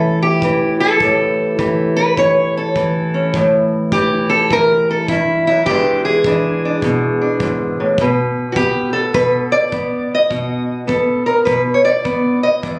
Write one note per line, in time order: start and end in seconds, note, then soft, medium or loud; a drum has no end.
0.00 1.03 A2 medium
0.00 0.44 E3 medium
0.00 1.07 C#4 soft
0.00 0.22 A4 medium
0.22 0.80 G4 medium
0.42 1.58 E3 medium
0.42 kick medium
0.80 1.96 A4 loud
1.00 3.32 A2 medium
1.00 1.59 G4 medium
1.00 kick medium
1.59 2.18 E3 medium
1.59 3.31 G4 soft
1.59 kick medium
1.96 2.17 B4 medium
2.17 2.76 E3 medium
2.17 2.55 C#5 loud
2.17 kick medium
2.57 3.73 A4 medium
2.76 3.93 E3 medium
2.76 kick medium
3.14 3.32 C#4 soft
3.34 5.09 A2 medium
3.34 kick medium
3.92 4.50 E3 medium
3.92 4.88 G4 loud
3.92 kick medium
4.30 4.50 A4 loud
4.51 5.64 E3 medium
4.51 4.89 A#4 loud
4.51 kick medium
4.91 5.08 A4 loud
5.08 5.47 G2 medium
5.08 5.46 E4 medium
5.08 kick medium
5.47 5.68 F#2 medium
5.47 5.65 E4 medium
5.66 7.42 E2 medium
5.66 6.25 E3 medium
5.66 8.01 G#3 medium
5.66 6.04 G4 loud
5.66 kick medium
5.71 6.26 D4 soft
6.05 7.99 G#4 medium
6.24 8.00 E3 medium
6.24 6.63 D4 soft
6.24 kick medium
6.65 7.20 D4 soft
6.82 8.00 B2 medium
6.82 kick medium
7.21 7.97 D4 medium
7.40 7.79 G#2 medium
7.40 kick medium
7.80 8.00 A2 medium
7.98 9.15 B2 medium
7.98 9.14 B4 medium
7.98 kick medium
8.52 8.56 F#4 medium
8.52 kick medium
8.56 9.72 B3 medium
8.56 8.92 G4 medium
8.93 9.72 A4 medium
9.14 10.29 B2 medium
9.14 9.30 B4 medium
9.14 kick medium
9.52 10.10 D5 loud
9.72 10.87 B3 medium
9.72 kick medium
10.15 10.91 D#5 medium
10.30 11.45 B2 medium
10.30 10.87 F#4 medium
10.30 kick medium
10.87 12.04 B3 medium
10.87 11.26 A4 medium
10.87 kick medium
11.26 11.39 A#4 medium
11.45 12.62 B2 medium
11.45 11.61 B4 medium
11.45 kick medium
11.74 11.84 C#5 medium
11.85 12.42 D5 loud
12.05 12.79 B3 medium
12.05 kick medium
12.43 12.63 D#5 loud
12.63 12.79 E2 medium
12.63 12.79 D5 medium
12.63 kick medium